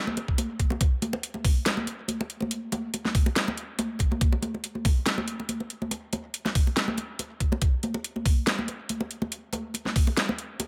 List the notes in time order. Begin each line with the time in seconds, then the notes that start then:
0.07 high conga
0.17 closed hi-hat, muted conga
0.28 kick
0.38 closed hi-hat, muted conga, high conga
0.59 kick, closed hi-hat
0.70 muted conga, high conga
0.81 kick, closed hi-hat, muted conga
1.02 closed hi-hat, high conga
1.13 muted conga
1.23 closed hi-hat
1.34 muted conga, high conga
1.45 kick, open hi-hat
1.66 snare, closed hi-hat, muted conga
1.77 high conga
1.87 closed hi-hat, muted conga
2.08 closed hi-hat, high conga
2.21 muted conga
2.30 closed hi-hat
2.40 muted conga, high conga
2.51 closed hi-hat
2.72 closed hi-hat, muted conga, high conga
2.94 closed hi-hat, muted conga
3.05 snare, high conga
3.15 kick, open hi-hat
3.26 muted conga
3.36 snare, closed hi-hat
3.48 muted conga, high conga
3.57 closed hi-hat
3.79 closed hi-hat, muted conga, high conga
3.99 kick, closed hi-hat, muted conga
4.12 high conga
4.21 kick, closed hi-hat
4.33 muted conga
4.42 closed hi-hat, high conga
4.54 muted conga
4.64 closed hi-hat
4.75 high conga
4.85 kick, open hi-hat, muted conga
5.06 snare, closed hi-hat, muted conga
5.18 high conga
5.28 closed hi-hat
5.40 muted conga
5.49 closed hi-hat, high conga
5.60 muted conga
5.70 closed hi-hat
5.82 high conga
5.91 closed hi-hat, muted conga
6.13 closed hi-hat, muted conga, high conga
6.34 closed hi-hat
6.45 snare, muted conga, high conga
6.55 kick, open hi-hat
6.67 muted conga
6.77 snare, closed hi-hat
6.88 high conga
6.98 closed hi-hat, muted conga
7.19 closed hi-hat, muted conga, high conga
7.40 kick, closed hi-hat
7.52 muted conga, high conga
7.61 kick, closed hi-hat, muted conga
7.83 closed hi-hat, high conga
7.94 muted conga
8.04 closed hi-hat
8.16 muted conga, high conga
8.26 kick, open hi-hat
8.47 snare, closed hi-hat, muted conga
8.59 high conga
8.68 closed hi-hat, muted conga
8.89 closed hi-hat, high conga
9.01 muted conga
9.11 closed hi-hat
9.22 muted conga, high conga
9.32 closed hi-hat
9.53 closed hi-hat, muted conga, high conga
9.74 closed hi-hat, muted conga
9.85 snare, high conga
9.96 kick, open hi-hat
10.07 muted conga
10.17 snare, closed hi-hat
10.29 muted conga, high conga
10.38 closed hi-hat
10.59 closed hi-hat, muted conga, high conga